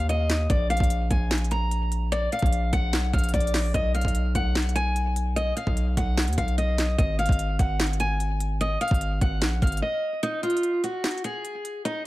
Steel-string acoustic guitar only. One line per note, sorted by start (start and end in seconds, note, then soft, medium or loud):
0.09 0.47 D#5 medium
0.50 0.67 D5 loud
0.70 1.08 F5 medium
1.11 1.49 G#5 medium
1.51 2.08 A#5 medium
2.12 2.29 D5 loud
2.33 2.71 F5 medium
2.73 3.11 F#5 medium
3.13 3.30 F5 medium
3.34 3.72 D5 medium
3.75 3.91 D#5 medium
3.94 4.33 F5 medium
4.35 4.73 F#5 medium
4.76 5.33 G#5 medium
5.36 5.53 D#5 loud
5.57 5.95 F5 medium
5.97 6.35 F#5 medium
6.38 6.55 F5 medium
6.58 6.96 D#5 medium
6.98 7.15 D#5 loud
7.19 7.57 F5 medium
7.59 7.97 F#5 medium
8.00 8.57 G#5 medium
8.61 8.78 D#5 loud
8.81 9.19 F5 medium
9.22 9.60 F#5 medium
9.62 9.79 F5 medium
9.82 10.20 D#5 medium
10.23 10.40 D#4 loud
10.43 10.81 F4 medium
10.84 11.22 F#4 medium
11.24 11.81 G#4 medium
11.85 12.02 D#4 loud